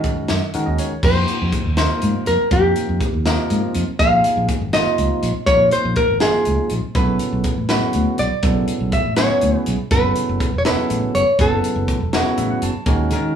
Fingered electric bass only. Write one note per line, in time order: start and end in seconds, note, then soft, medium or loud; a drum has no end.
0.30 0.40 F#2 medium
0.55 0.65 D#3 medium
0.67 0.77 D#2 medium
0.92 muted fingered electric bass stroke soft
1.03 1.24 F2 medium
1.42 1.51 F2 medium
1.66 1.86 D#2 medium
2.03 2.13 G#2 medium
2.28 2.38 F2 medium
2.40 muted fingered electric bass stroke soft
2.51 2.72 F2 loud
2.89 2.99 F2 medium
3.14 3.34 D#2 medium
3.51 3.61 G#2 medium
3.75 3.86 F2 medium
3.88 muted fingered electric bass stroke soft
4.00 4.20 A#1 loud
4.37 4.47 A#1 medium
4.61 4.82 G#1 medium
4.98 5.09 C#2 medium
5.23 5.33 A#1 medium
5.35 muted fingered electric bass stroke soft
5.47 5.68 A#1 medium
5.85 5.95 A#1 medium
6.10 6.31 G#1 medium
6.47 6.57 C#2 medium
6.71 6.81 A#1 medium
6.84 muted fingered electric bass stroke soft
6.95 7.16 B1 medium
7.33 7.43 B1 medium
7.58 7.78 A1 medium
7.95 8.05 D2 medium
8.20 8.30 B1 medium
8.32 muted fingered electric bass stroke soft
8.43 8.64 B1 loud
8.80 8.91 B1 medium
9.06 9.26 A1 medium
9.43 9.53 D2 medium
9.67 9.77 B1 medium
9.80 muted fingered electric bass stroke soft
9.91 10.12 F#1 loud
10.29 10.39 F#1 medium
10.54 10.74 E1 medium
10.91 11.01 A1 medium
11.15 11.25 F#1 medium
11.27 muted fingered electric bass stroke soft
11.39 11.60 F#1 loud
11.76 11.86 F#1 medium
12.01 12.21 E1 medium
12.38 12.48 A1 medium
12.62 12.73 F#1 medium
12.86 13.13 D#2 medium
13.11 13.32 D#3 medium